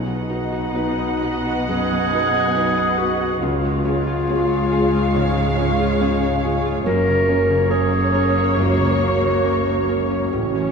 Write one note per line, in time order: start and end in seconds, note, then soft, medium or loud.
0.00 0.29 B1 soft
0.00 3.39 B1 soft
0.00 1.67 B2 soft
0.00 3.39 B2 soft
0.00 3.40 B3 medium
0.00 1.64 D#4 medium
0.00 3.39 D#5 soft
0.00 3.40 F#5 medium
0.07 1.90 F#3 soft
0.29 2.12 D#4 soft
0.29 0.71 F#4 soft
0.29 0.71 B4 soft
0.52 1.44 F#4 soft
0.75 1.18 D#4 soft
0.75 1.18 F#4 soft
0.75 1.21 B4 soft
0.75 1.18 B4 soft
0.98 2.76 D#5 soft
1.22 1.65 F#4 soft
1.22 1.65 B4 soft
1.22 2.55 B4 soft
1.45 2.33 F#4 soft
1.68 2.12 F#2 soft
1.68 3.46 B2 soft
1.68 3.00 G#4 medium
1.91 3.46 F#3 soft
2.13 3.46 D#4 soft
2.13 2.52 F#4 soft
2.13 2.52 B4 soft
2.34 3.20 F#4 soft
2.56 2.96 D#4 soft
2.56 2.96 F#4 soft
2.56 2.98 B4 soft
2.56 2.96 B4 soft
2.78 3.46 D#5 soft
2.98 3.41 F#4 medium
2.98 3.39 F#4 soft
2.98 3.46 B4 soft
2.98 3.39 B4 soft
3.21 3.46 F#4 soft
3.41 3.85 C#2 medium
3.41 6.81 C#2 medium
3.41 5.14 C#3 medium
3.41 6.82 C#3 medium
3.41 6.81 G#3 medium
3.41 6.38 F4 medium
3.41 6.82 F5 medium
3.46 6.83 C#5 medium
3.65 5.36 G#3 soft
3.85 5.58 C#4 soft
3.85 4.25 F4 soft
3.85 4.25 G#4 soft
4.07 4.93 F4 soft
4.29 4.68 C#4 soft
4.29 4.69 F4 soft
4.29 4.71 G#4 soft
4.29 4.69 G#4 soft
4.51 6.21 C#5 soft
4.72 5.11 F4 soft
4.72 6.01 G#4 soft
4.72 5.11 G#4 soft
4.94 5.79 F4 soft
5.14 5.56 G#2 medium
5.14 6.89 C#3 medium
5.37 6.89 G#3 soft
5.58 7.27 C#4 soft
5.58 5.96 F4 soft
5.58 5.97 G#4 soft
5.81 6.64 F4 soft
6.00 6.39 C#4 soft
6.00 6.39 F4 soft
6.00 6.39 G#4 soft
6.00 6.43 G#4 medium
6.22 7.91 C#5 medium
6.44 6.82 F4 soft
6.44 6.89 G#4 soft
6.44 6.82 G#4 soft
6.66 6.90 F4 soft
6.85 10.29 F#1 medium
6.85 10.28 F#2 medium
6.85 7.27 F#2 medium
6.85 8.56 F#2 medium
6.85 10.29 A#3 medium
6.85 7.72 A#4 medium
6.85 10.29 C#5 medium
7.07 7.49 C#3 soft
7.28 7.67 C#4 soft
7.28 8.35 C#4 soft
7.28 7.67 A#4 soft
7.50 8.78 C#3 soft
7.70 8.09 C#4 soft
7.70 8.57 G#4 medium
7.70 8.13 A#4 soft
7.70 8.10 A#4 soft
7.92 9.64 C#5 soft
8.14 8.52 C#4 soft
8.14 9.43 A#4 soft
8.14 8.53 A#4 soft
8.36 8.99 C#4 soft
8.55 8.98 C#2 soft
8.55 10.37 F#2 soft
8.55 10.31 F#4 medium
8.79 9.21 C#3 soft
8.99 9.39 C#4 soft
8.99 10.08 C#4 soft
8.99 9.39 A#4 soft
9.23 10.37 C#3 soft
9.44 9.84 C#4 soft
9.44 9.84 A#4 soft
9.44 9.87 A#4 soft
9.66 10.72 C#5 soft
9.88 10.29 C#4 soft
9.88 10.37 A#4 soft
9.88 10.29 A#4 soft
10.10 10.72 C#4 soft
10.32 10.72 A1 soft
10.32 10.72 A2 soft
10.32 10.72 C#4 soft
10.32 10.72 F#4 medium
10.32 10.72 C#5 soft
10.55 10.72 E3 soft